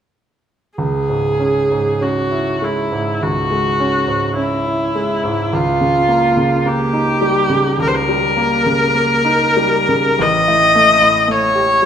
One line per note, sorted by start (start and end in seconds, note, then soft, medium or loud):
0.78 3.18 C#2 soft
0.78 2.04 G#4 medium
1.09 1.58 G#2 soft
1.40 1.89 C#4 soft
1.71 2.20 G#2 soft
2.01 2.50 C#4 soft
2.01 2.65 F#4 medium
2.31 2.80 E4 soft
2.62 3.10 G#3 soft
2.62 3.24 E4 soft
2.92 3.39 G#2 soft
3.22 5.49 C#2 soft
3.22 4.37 F#4 medium
3.51 3.97 G#3 soft
3.80 4.26 C#4 soft
4.08 4.54 G#2 soft
4.36 4.83 C#4 soft
4.36 5.56 E4 medium
4.66 5.13 E4 soft
4.95 5.41 G#3 soft
5.24 5.52 G#2 soft
5.53 7.76 C#2 soft
5.53 6.68 F4 medium
5.81 6.26 C#3 soft
6.08 6.54 A#3 soft
6.37 6.83 C#3 soft
6.66 7.11 A#3 soft
6.66 7.81 G4 medium
6.93 7.39 D#4 soft
7.21 7.68 G3 soft
7.50 7.97 C#3 soft
7.79 10.16 C#2 soft
7.79 7.89 A#4 medium
7.87 7.97 C5 medium
7.95 10.24 A#4 medium
8.09 8.55 G3 soft
8.37 8.84 A#3 soft
8.66 9.14 C#3 soft
8.95 9.45 A#3 soft
9.25 9.77 D#4 soft
9.57 10.08 G3 soft
9.89 10.20 C#3 soft
10.19 11.86 A1 soft
10.19 11.32 D#5 medium
10.48 10.92 A2 soft
10.76 11.19 A3 soft
11.02 11.45 A2 soft
11.28 11.72 A3 soft
11.28 11.86 C#5 medium
11.56 11.86 G4 soft
11.82 11.86 G3 soft